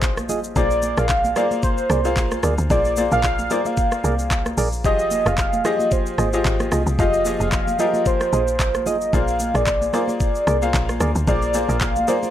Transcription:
Already playing: log drum bass A#1, grand piano F3 F4 G4 G#4 D5 D#5, soft synth lead C5, downlifter
0.02 kick, clap, shaker
0.17 cross-stick, high conga, shaker
0.29 log drum bass G#1, synth stab F4 G#4 D#5, high conga, low conga, shaker
0.44 shaker
0.56 log drum bass A#1, grand piano A#3 F4 G#4 C5 D5, soft synth lead D5, kick, low conga, shaker
0.70 shaker
0.82 high conga, shaker
0.97 log drum bass A#1, synth stab G#4 A#4 D5, soft synth lead F5, cross-stick, high conga, shaker
1.09 kick, clap, shaker
1.24 high conga, shaker
1.36 grand piano A#3 F4 G#4 C5 F5, synth stab G#4 A#4 D5, soft synth lead D5, cross-stick, low conga, shaker
1.51 high conga, shaker
1.63 soft synth lead C5, kick, shaker
1.78 shaker
1.90 log drum bass C2, synth stab G#4 A#4 D5, cross-stick, high conga, shaker
2.05 grand piano A#3 F4 G#4 C5 F5, shaker
2.16 log drum bass A#1, kick, clap, shaker
2.31 cross-stick, high conga, shaker
2.43 log drum bass D2, synth stab G#4 A#4 D5, cross-stick, high conga, low conga, shaker
2.58 log drum bass D2, shaker
2.70 log drum bass A#1, grand piano A#3 F4 G#4 C5 D5, soft synth lead D5, kick, low conga, shaker
2.85 shaker
2.97 grand piano A#3 F4 G#4 C5 D5, high conga, shaker
3.11 log drum bass A#1, synth stab G#4 A#4 D5, soft synth lead F5, high conga, shaker
3.24 kick, clap, shaker
3.39 high conga, shaker
3.50 grand piano A#3 F4 G#4 C5 D5, synth stab G#4 A#4 D5, soft synth lead D5, low conga, shaker
3.65 soft synth lead F5, high conga, shaker
3.77 kick, shaker
3.92 cross-stick, shaker
4.04 log drum bass C2, synth stab G#4 A#4 D5, high conga, shaker
4.19 shaker
4.31 kick, clap, shaker
4.46 cross-stick, high conga, shaker
4.58 log drum bass A#1, synth stab G#4 A#4 D5, open hi-hat, high conga, low conga, shaker
4.72 shaker
4.84 log drum bass F1, grand piano F3 F4 G4 G#4 D#5, soft synth lead D#5, kick, low conga, shaker
4.99 shaker
5.11 high conga, shaker
5.26 log drum bass F1, synth stab F4 G#4 D#5, soft synth lead F5, cross-stick, high conga, shaker
5.38 kick, clap, shaker
5.53 high conga, shaker
5.65 grand piano F3 F4 G4 G#4 D#5, synth stab F4 G#4 D#5, soft synth lead D#5, cross-stick, low conga, shaker
5.79 high conga, shaker
5.91 soft synth lead C5, kick, shaker
6.06 shaker
6.18 log drum bass G#1, synth stab F4 G#4 D#5, cross-stick, high conga, shaker
6.33 grand piano F3 F4 G4 G#4 D#5, shaker
6.45 log drum bass G#1, kick, clap, shaker
6.60 cross-stick, high conga, shaker
6.72 log drum bass C2, synth stab F4 G#4 D#5, cross-stick, high conga, low conga, shaker
6.87 log drum bass C2, shaker
6.99 log drum bass F1, grand piano F3 F4 G4 G#4 F5, soft synth lead D#5, kick, low conga, shaker
7.13 shaker
7.25 grand piano F3 F4 G4 G#4 D#5, high conga, shaker
7.40 log drum bass F1, synth stab F4 G#4 D#5, soft synth lead F5, high conga, shaker
7.52 kick, clap, shaker
7.67 high conga, shaker
7.79 grand piano F3 F4 G4 G#4 A#4, synth stab F4 G#4 D#5, soft synth lead D#5, low conga, shaker
7.94 high conga, shaker
8.06 soft synth lead C5, kick, shaker
8.21 cross-stick, shaker
8.33 log drum bass A#1, synth stab F4 G#4 D#5, high conga, shaker
8.48 shaker
8.60 kick, clap, shaker
8.74 cross-stick, high conga, shaker
8.86 log drum bass G#1, synth stab F4 G#4 D#5, soft synth lead D#5, high conga, low conga, shaker
9.01 shaker
9.13 log drum bass A#1, grand piano A#3 F4 G#4 C5 D5, soft synth lead F5, kick, low conga, shaker
9.28 shaker
9.39 high conga, shaker
9.54 log drum bass A#1, synth stab G#4 A#4 D5, soft synth lead D5, cross-stick, high conga, shaker
9.67 kick, clap, shaker
9.81 high conga, shaker
9.93 grand piano A#3 F4 G#4 C5 D5, synth stab G#4 A#4 D5, soft synth lead C5, cross-stick, low conga, shaker
10.08 soft synth lead D5, high conga, shaker
10.20 kick, shaker
10.35 shaker
10.47 log drum bass C2, synth stab G#4 A#4 D5, cross-stick, high conga, shaker
10.62 grand piano A#3 F4 G#4 C5 F5, shaker
10.74 log drum bass A#1, kick, clap, shaker
10.89 cross-stick, high conga, shaker
11.00 log drum bass D2, synth stab G#4 A#4 D5, cross-stick, high conga, low conga, shaker
11.15 log drum bass D2, shaker
11.28 log drum bass A#1, grand piano A#3 F4 G#4 C5 F5, soft synth lead D5, kick, low conga, shaker
11.42 shaker
11.54 grand piano A#3 F4 G#4 C5 D5, high conga, shaker
11.69 log drum bass A#1, synth stab G#4 A#4 D5, soft synth lead F5, high conga, shaker
11.81 kick, clap, shaker
11.96 high conga, shaker
12.08 grand piano A#3 F4 G#4 C5 D5, synth stab G#4 A#4 D5, soft synth lead C5, low conga, shaker
12.23 high conga, shaker

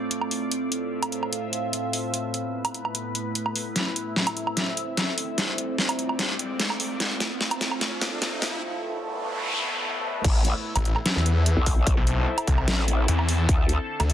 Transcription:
Already playing: ambient pad A2 A3 C4 F4 D5
0.11 closed hi-hat
0.21 low woodblock
0.31 open hi-hat
0.51 ambient pad C4 F4 E5, closed hi-hat
0.72 closed hi-hat
1.03 closed hi-hat, low woodblock
1.12 closed hi-hat
1.23 low woodblock
1.33 closed hi-hat
1.53 closed hi-hat
1.73 closed hi-hat
1.93 open hi-hat
2.14 ambient pad B3 E4 B4, closed hi-hat
2.34 closed hi-hat
2.65 closed hi-hat, low woodblock
2.74 closed hi-hat
2.85 low woodblock
2.95 closed hi-hat
3.15 closed hi-hat
3.35 closed hi-hat
3.46 low woodblock
3.56 open hi-hat
3.76 ambient pad C4 E5, snare, closed hi-hat, riser
3.96 closed hi-hat
4.16 snare
4.27 closed hi-hat, low woodblock
4.37 closed hi-hat
4.47 low woodblock
4.57 snare, closed hi-hat
4.77 closed hi-hat
4.97 snare, closed hi-hat
5.18 open hi-hat
5.38 ambient pad A2 F4 D5, snare, closed hi-hat
5.58 closed hi-hat
5.78 snare
5.89 closed hi-hat, low woodblock
5.99 closed hi-hat
6.09 low woodblock
6.19 snare, closed hi-hat
6.39 closed hi-hat
6.60 snare, closed hi-hat
6.70 low woodblock
6.80 open hi-hat
7.00 ambient pad A2 A3 E5, snare, closed hi-hat
7.20 snare, closed hi-hat
7.41 snare
7.51 closed hi-hat, low woodblock
7.61 snare, closed hi-hat
7.71 low woodblock
7.81 snare, closed hi-hat
8.02 snare, closed hi-hat
8.22 snare, closed hi-hat
8.42 snare, open hi-hat
8.62 ambient pad B3 E4 B4, noise sweep
10.24 wobble bass A1, ambient pad C4 E4 A4, kick, closed hi-hat, crash
10.45 closed hi-hat
10.76 detuned saw bass A1, closed hi-hat, low woodblock
10.85 closed hi-hat
10.96 low woodblock
11.06 snare, closed hi-hat
11.16 detuned saw bass E2
11.26 closed hi-hat
11.46 closed hi-hat
11.57 wobble bass B1
11.66 kick, open hi-hat
11.87 kick, closed hi-hat
11.97 detuned saw bass B1
12.07 closed hi-hat
12.38 closed hi-hat, low woodblock
12.47 detuned saw bass C2, kick, closed hi-hat
12.58 low woodblock
12.68 wobble bass A1, snare, closed hi-hat
12.88 closed hi-hat
13.08 detuned saw bass E2, closed hi-hat
13.19 low woodblock
13.29 open hi-hat
13.49 wobble bass D2, ambient pad D3 D4 F4 A5, kick, closed hi-hat
13.69 closed hi-hat
14.00 detuned saw bass D2, closed hi-hat, low woodblock
14.10 closed hi-hat

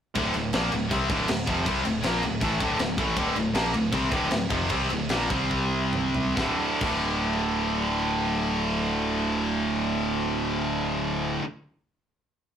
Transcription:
0.15 picked electric bass D1, distorted electric guitar D2 A2 D3, kick, crash
0.34 picked electric bass D1, distorted electric guitar D2 A2, crash
0.53 picked electric bass A#1, distorted electric guitar A#2 F3 A#3, snare, crash
0.72 picked electric bass D1, distorted electric guitar D2 A2, crash
0.91 picked electric bass C2, distorted electric guitar C3 G3 C4, kick, crash
1.09 picked electric bass D1, distorted electric guitar D2 A2 D3, kick, crash
1.28 picked electric bass D1, distorted electric guitar D2 A2, snare, crash
1.47 picked electric bass F1, distorted electric guitar F2 C3 F3, kick, crash
1.66 picked electric bass C2, distorted electric guitar C3 G3 C4, kick, crash
1.85 picked electric bass D1, distorted electric guitar D2 A2, crash
2.03 picked electric bass A#1, distorted electric guitar A#2 F3 A#3, snare, crash
2.23 picked electric bass D1, distorted electric guitar D2 A2, crash
2.41 picked electric bass A1, distorted electric guitar A2 E3 A3, kick, crash
2.60 picked electric bass D1, distorted electric guitar D2 A2 D3, kick, crash
2.79 picked electric bass D1, distorted electric guitar D2 A2, snare, crash
2.98 picked electric bass A1, distorted electric guitar A2 E3 A3, kick, crash
3.17 picked electric bass D1, distorted electric guitar D2 A2 D3, kick, crash
3.35 picked electric bass D1, distorted electric guitar D2 A2, crash
3.53 picked electric bass A#1, distorted electric guitar A#2 F3 A#3, snare, crash
3.73 picked electric bass D1, distorted electric guitar D2 A2, crash
3.92 picked electric bass C2, distorted electric guitar C3 G3 C4, kick, crash
4.11 picked electric bass D1, distorted electric guitar D2 A2 D3, kick, crash
4.30 picked electric bass D1, distorted electric guitar D2 A2, snare, crash
4.49 picked electric bass F1, distorted electric guitar F2 C3 F3, kick, crash
4.70 picked electric bass C2, distorted electric guitar C3 G3 C4, kick, crash
4.90 picked electric bass D1, distorted electric guitar D2 A2, crash
5.09 picked electric bass A#1, distorted electric guitar A#2 F3 A#3, snare, crash
5.30 picked electric bass C2, distorted electric guitar C3 G3 C4, kick, crash
5.51 kick
5.93 mid tom
6.15 floor tom
6.35 picked electric bass D1, distorted electric guitar D2 A2, kick, snare
6.39 distorted electric guitar D3
6.80 picked electric bass D1, distorted electric guitar D2 A2, kick, crash
6.84 distorted electric guitar D3

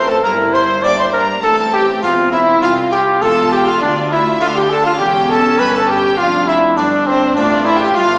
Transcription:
Already playing: double bass section A1, harpsichord A2, cello section A2, viola section C4, trumpet C5
0.09 trumpet A4, violin section A4 A5
0.23 double bass section G1, cello section G2, harpsichord G2, viola section E4, trumpet A#4, violin section A#4 A#5
0.53 trumpet C5, violin section C5 C6
0.83 double bass section G2, cello section G3, harpsichord G3 A#3 E4, viola section D4, trumpet D5, violin section D5 D6
0.98 trumpet C5, violin section C5 C6
1.13 trumpet A#4, violin section A#4 A#5
1.43 double bass section A1, cello section A2, harpsichord A2, viola section C4, trumpet A4, violin section A4 A5
1.73 violin section G4 G5, trumpet G4
2.02 double bass section E1, harpsichord E2 C4 F4, cello section E2, viola section C4, trumpet F4, violin section F4 F5
2.32 trumpet E4, violin section E4 E5
2.62 cello section C2, harpsichord C2 C4 F4, double bass section C2, viola section F4, trumpet F4, violin section F4 F5
2.92 trumpet G4, violin section G4 G5
3.21 double bass section E1, cello section E2, harpsichord E2 C4 F4, trumpet A4, violin section A4 A5
3.51 trumpet G4, violin section G4 G5
3.66 trumpet F4, violin section F4 F5
3.81 double bass section D2, harpsichord D2, cello section D2, trumpet D4, violin section D4 D5
4.11 trumpet E4, violin section E4 E5
4.40 double bass section D2, harpsichord D3 A3 D4 F4, cello section D3, viola section D4, trumpet F4, violin section F4 F5
4.56 violin section G4 G5, trumpet G4
4.70 trumpet A4, violin section A4 A5
4.85 trumpet F4, violin section F4 F5
4.99 double bass section E1, cello section E2, harpsichord E2, viola section C#4, violin section G4 G5, trumpet G4
5.28 violin section A4 A5, trumpet A4
5.58 double bass section G1, harpsichord G2 C#4 G4, cello section G2, violin section B4 B5, trumpet B4
5.73 violin section A4 A5, trumpet A4
5.88 violin section G4 G5, trumpet G4
6.18 double bass section F1, cello section F2, harpsichord F2, viola section D4, trumpet F4, violin section F4 F5
6.47 trumpet E4, violin section E4 E5
6.77 double bass section G1, harpsichord G2 A3 D4, cello section G2, trumpet D4, violin section D4 D5, viola section D4
7.06 violin section C4 C5, trumpet C4
7.36 double bass section A1, harpsichord A2 A3 D4, cello section A2, violin section D4 D5, trumpet D4, viola section F4
7.65 trumpet E4, violin section E4 E5
7.80 violin section G4 G5, trumpet G4
7.96 double bass section G1, cello section G2, harpsichord G2 A3 D4, viola section F4, violin section F4 F5, trumpet F4

